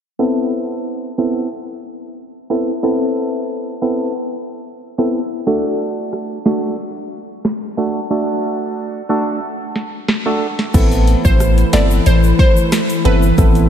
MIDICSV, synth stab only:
0, 0, Header, 1, 2, 480
1, 0, Start_track
1, 0, Tempo, 659341
1, 141, Time_signature, 4, 2, 24, 8
1, 9966, End_track
2, 0, Start_track
2, 0, Title_t, "Synth stab"
2, 0, Program_c, 0, 62
2, 139, Note_on_c, 0, 59, 92
2, 140, Note_on_c, 0, 60, 86
2, 142, Note_on_c, 0, 64, 83
2, 143, Note_on_c, 0, 69, 98
2, 806, Note_off_c, 0, 59, 0
2, 806, Note_off_c, 0, 60, 0
2, 807, Note_off_c, 0, 64, 0
2, 808, Note_off_c, 0, 69, 0
2, 859, Note_on_c, 0, 59, 79
2, 861, Note_on_c, 0, 60, 71
2, 862, Note_on_c, 0, 64, 72
2, 863, Note_on_c, 0, 69, 85
2, 1082, Note_off_c, 0, 59, 0
2, 1083, Note_off_c, 0, 60, 0
2, 1083, Note_off_c, 0, 64, 0
2, 1084, Note_off_c, 0, 69, 0
2, 1820, Note_on_c, 0, 59, 73
2, 1821, Note_on_c, 0, 60, 66
2, 1822, Note_on_c, 0, 64, 68
2, 1824, Note_on_c, 0, 69, 85
2, 1983, Note_off_c, 0, 59, 0
2, 1984, Note_off_c, 0, 60, 0
2, 1984, Note_off_c, 0, 64, 0
2, 1985, Note_off_c, 0, 69, 0
2, 2059, Note_on_c, 0, 59, 92
2, 2061, Note_on_c, 0, 60, 82
2, 2062, Note_on_c, 0, 64, 82
2, 2064, Note_on_c, 0, 69, 105
2, 2726, Note_off_c, 0, 59, 0
2, 2727, Note_off_c, 0, 60, 0
2, 2727, Note_off_c, 0, 64, 0
2, 2728, Note_off_c, 0, 69, 0
2, 2779, Note_on_c, 0, 59, 79
2, 2781, Note_on_c, 0, 60, 72
2, 2782, Note_on_c, 0, 64, 68
2, 2783, Note_on_c, 0, 69, 82
2, 3002, Note_off_c, 0, 59, 0
2, 3003, Note_off_c, 0, 60, 0
2, 3004, Note_off_c, 0, 64, 0
2, 3004, Note_off_c, 0, 69, 0
2, 3627, Note_on_c, 0, 59, 78
2, 3628, Note_on_c, 0, 60, 69
2, 3629, Note_on_c, 0, 64, 69
2, 3631, Note_on_c, 0, 69, 81
2, 3780, Note_off_c, 0, 59, 0
2, 3781, Note_off_c, 0, 60, 0
2, 3782, Note_off_c, 0, 64, 0
2, 3783, Note_off_c, 0, 69, 0
2, 3979, Note_on_c, 0, 57, 92
2, 3981, Note_on_c, 0, 62, 85
2, 3983, Note_on_c, 0, 66, 88
2, 3984, Note_on_c, 0, 69, 98
2, 4646, Note_off_c, 0, 57, 0
2, 4647, Note_off_c, 0, 62, 0
2, 4648, Note_off_c, 0, 66, 0
2, 4648, Note_off_c, 0, 69, 0
2, 4700, Note_on_c, 0, 57, 77
2, 4701, Note_on_c, 0, 62, 67
2, 4703, Note_on_c, 0, 66, 73
2, 4704, Note_on_c, 0, 69, 83
2, 4922, Note_off_c, 0, 57, 0
2, 4923, Note_off_c, 0, 62, 0
2, 4924, Note_off_c, 0, 66, 0
2, 4924, Note_off_c, 0, 69, 0
2, 5659, Note_on_c, 0, 57, 74
2, 5661, Note_on_c, 0, 62, 69
2, 5662, Note_on_c, 0, 66, 70
2, 5664, Note_on_c, 0, 69, 85
2, 5823, Note_off_c, 0, 57, 0
2, 5824, Note_off_c, 0, 62, 0
2, 5825, Note_off_c, 0, 66, 0
2, 5825, Note_off_c, 0, 69, 0
2, 5899, Note_on_c, 0, 57, 89
2, 5901, Note_on_c, 0, 62, 85
2, 5902, Note_on_c, 0, 66, 85
2, 5903, Note_on_c, 0, 69, 97
2, 6566, Note_off_c, 0, 57, 0
2, 6567, Note_off_c, 0, 62, 0
2, 6567, Note_off_c, 0, 66, 0
2, 6568, Note_off_c, 0, 69, 0
2, 6619, Note_on_c, 0, 57, 79
2, 6620, Note_on_c, 0, 62, 71
2, 6622, Note_on_c, 0, 66, 69
2, 6623, Note_on_c, 0, 69, 84
2, 6842, Note_off_c, 0, 57, 0
2, 6842, Note_off_c, 0, 62, 0
2, 6843, Note_off_c, 0, 66, 0
2, 6844, Note_off_c, 0, 69, 0
2, 7466, Note_on_c, 0, 57, 76
2, 7468, Note_on_c, 0, 62, 68
2, 7469, Note_on_c, 0, 66, 67
2, 7471, Note_on_c, 0, 69, 87
2, 7620, Note_off_c, 0, 57, 0
2, 7621, Note_off_c, 0, 62, 0
2, 7622, Note_off_c, 0, 66, 0
2, 7623, Note_off_c, 0, 69, 0
2, 7819, Note_on_c, 0, 59, 98
2, 7820, Note_on_c, 0, 60, 85
2, 7821, Note_on_c, 0, 64, 83
2, 7823, Note_on_c, 0, 69, 106
2, 8486, Note_off_c, 0, 59, 0
2, 8486, Note_off_c, 0, 60, 0
2, 8487, Note_off_c, 0, 64, 0
2, 8488, Note_off_c, 0, 69, 0
2, 8540, Note_on_c, 0, 59, 79
2, 8541, Note_on_c, 0, 60, 71
2, 8543, Note_on_c, 0, 64, 75
2, 8544, Note_on_c, 0, 69, 89
2, 8762, Note_off_c, 0, 59, 0
2, 8763, Note_off_c, 0, 60, 0
2, 8764, Note_off_c, 0, 64, 0
2, 8764, Note_off_c, 0, 69, 0
2, 9498, Note_on_c, 0, 59, 77
2, 9500, Note_on_c, 0, 60, 70
2, 9501, Note_on_c, 0, 64, 70
2, 9503, Note_on_c, 0, 69, 83
2, 9663, Note_off_c, 0, 59, 0
2, 9664, Note_off_c, 0, 60, 0
2, 9664, Note_off_c, 0, 64, 0
2, 9665, Note_off_c, 0, 69, 0
2, 9739, Note_on_c, 0, 59, 94
2, 9741, Note_on_c, 0, 60, 85
2, 9742, Note_on_c, 0, 64, 89
2, 9744, Note_on_c, 0, 69, 104
2, 9966, Note_off_c, 0, 59, 0
2, 9966, Note_off_c, 0, 60, 0
2, 9966, Note_off_c, 0, 64, 0
2, 9966, Note_off_c, 0, 69, 0
2, 9966, End_track
0, 0, End_of_file